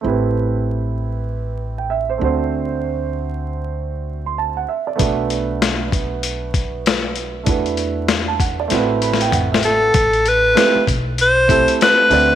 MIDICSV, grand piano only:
0, 0, Header, 1, 2, 480
1, 0, Start_track
1, 0, Tempo, 618557
1, 36, Time_signature, 4, 2, 24, 8
1, 9584, End_track
2, 0, Start_track
2, 0, Title_t, "Grand piano"
2, 0, Program_c, 0, 0
2, 8, Note_on_c, 0, 57, 54
2, 22, Note_on_c, 0, 60, 55
2, 34, Note_on_c, 0, 64, 56
2, 48, Note_on_c, 0, 67, 50
2, 61, Note_on_c, 0, 71, 62
2, 1224, Note_off_c, 0, 71, 0
2, 1383, Note_on_c, 0, 79, 54
2, 1470, Note_off_c, 0, 79, 0
2, 1474, Note_on_c, 0, 76, 64
2, 1618, Note_off_c, 0, 76, 0
2, 1626, Note_on_c, 0, 72, 60
2, 1671, Note_off_c, 0, 57, 0
2, 1678, Note_off_c, 0, 60, 0
2, 1684, Note_off_c, 0, 64, 0
2, 1688, Note_on_c, 0, 57, 53
2, 1691, Note_off_c, 0, 67, 0
2, 1703, Note_on_c, 0, 60, 57
2, 1714, Note_on_c, 0, 62, 53
2, 1725, Note_on_c, 0, 66, 56
2, 1729, Note_off_c, 0, 72, 0
2, 1740, Note_on_c, 0, 72, 69
2, 3308, Note_on_c, 0, 84, 54
2, 3392, Note_off_c, 0, 84, 0
2, 3401, Note_on_c, 0, 81, 62
2, 3542, Note_off_c, 0, 81, 0
2, 3545, Note_on_c, 0, 78, 60
2, 3591, Note_off_c, 0, 57, 0
2, 3598, Note_off_c, 0, 60, 0
2, 3604, Note_off_c, 0, 62, 0
2, 3609, Note_off_c, 0, 66, 0
2, 3617, Note_off_c, 0, 72, 0
2, 3631, Note_off_c, 0, 78, 0
2, 3636, Note_on_c, 0, 76, 54
2, 3779, Note_off_c, 0, 76, 0
2, 3780, Note_on_c, 0, 74, 56
2, 3845, Note_on_c, 0, 57, 67
2, 3858, Note_on_c, 0, 59, 63
2, 3871, Note_on_c, 0, 62, 58
2, 3886, Note_on_c, 0, 66, 57
2, 3896, Note_on_c, 0, 71, 66
2, 4011, Note_off_c, 0, 74, 0
2, 5750, Note_off_c, 0, 57, 0
2, 5756, Note_off_c, 0, 59, 0
2, 5762, Note_off_c, 0, 62, 0
2, 5770, Note_off_c, 0, 66, 0
2, 5770, Note_on_c, 0, 57, 57
2, 5775, Note_off_c, 0, 71, 0
2, 5784, Note_on_c, 0, 62, 57
2, 5796, Note_on_c, 0, 64, 52
2, 5811, Note_on_c, 0, 66, 52
2, 5820, Note_on_c, 0, 71, 66
2, 6426, Note_on_c, 0, 81, 58
2, 6511, Note_off_c, 0, 81, 0
2, 6520, Note_on_c, 0, 78, 60
2, 6661, Note_off_c, 0, 78, 0
2, 6671, Note_on_c, 0, 74, 60
2, 6722, Note_off_c, 0, 57, 0
2, 6731, Note_off_c, 0, 62, 0
2, 6734, Note_on_c, 0, 57, 64
2, 6737, Note_off_c, 0, 64, 0
2, 6744, Note_off_c, 0, 66, 0
2, 6747, Note_on_c, 0, 60, 60
2, 6749, Note_off_c, 0, 71, 0
2, 6760, Note_on_c, 0, 64, 56
2, 6772, Note_on_c, 0, 66, 58
2, 6787, Note_on_c, 0, 71, 74
2, 6897, Note_off_c, 0, 74, 0
2, 7004, Note_on_c, 0, 83, 60
2, 7140, Note_off_c, 0, 83, 0
2, 7150, Note_on_c, 0, 79, 63
2, 7231, Note_off_c, 0, 79, 0
2, 7238, Note_on_c, 0, 78, 64
2, 7377, Note_off_c, 0, 78, 0
2, 7389, Note_on_c, 0, 76, 62
2, 7685, Note_off_c, 0, 57, 0
2, 7692, Note_off_c, 0, 60, 0
2, 7694, Note_off_c, 0, 76, 0
2, 7699, Note_off_c, 0, 64, 0
2, 7705, Note_off_c, 0, 66, 0
2, 7713, Note_off_c, 0, 71, 0
2, 8184, Note_on_c, 0, 57, 67
2, 8190, Note_on_c, 0, 60, 55
2, 8197, Note_on_c, 0, 64, 54
2, 8202, Note_on_c, 0, 67, 54
2, 8209, Note_on_c, 0, 71, 69
2, 8376, Note_off_c, 0, 57, 0
2, 8379, Note_off_c, 0, 60, 0
2, 8383, Note_off_c, 0, 64, 0
2, 8385, Note_off_c, 0, 67, 0
2, 8389, Note_off_c, 0, 71, 0
2, 8905, Note_on_c, 0, 57, 62
2, 8911, Note_on_c, 0, 60, 59
2, 8916, Note_on_c, 0, 64, 57
2, 8921, Note_on_c, 0, 67, 54
2, 8929, Note_on_c, 0, 69, 72
2, 9371, Note_off_c, 0, 57, 0
2, 9379, Note_off_c, 0, 60, 0
2, 9383, Note_on_c, 0, 57, 66
2, 9391, Note_on_c, 0, 60, 60
2, 9395, Note_on_c, 0, 62, 62
2, 9396, Note_off_c, 0, 64, 0
2, 9399, Note_off_c, 0, 67, 0
2, 9402, Note_off_c, 0, 69, 0
2, 9402, Note_on_c, 0, 66, 63
2, 9409, Note_on_c, 0, 74, 79
2, 9584, Note_off_c, 0, 57, 0
2, 9584, Note_off_c, 0, 60, 0
2, 9584, Note_off_c, 0, 62, 0
2, 9584, Note_off_c, 0, 66, 0
2, 9584, Note_off_c, 0, 74, 0
2, 9584, End_track
0, 0, End_of_file